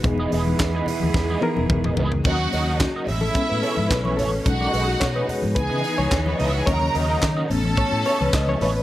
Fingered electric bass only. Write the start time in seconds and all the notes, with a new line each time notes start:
0.04 E1
0.33 E1
0.60 E2
1.03 D#2
1.14 E2
1.58 E1
1.70 E1
1.99 C#2
2.25 D#2
2.53 D#2
3.09 A1
3.35 muted fingered electric bass stroke
3.52 A2
3.79 G#2
3.91 B1
4.19 A1
4.46 B1
4.74 B1
5.01 B2
5.44 G#2
5.56 C#2
5.71 C#3
5.99 C#2
6.12 D#2
6.39 C#2
6.67 D#2
6.95 D#2
7.23 D#3
7.51 A1
7.92 A2
8.21 C#2
8.33 C#2
8.61 A1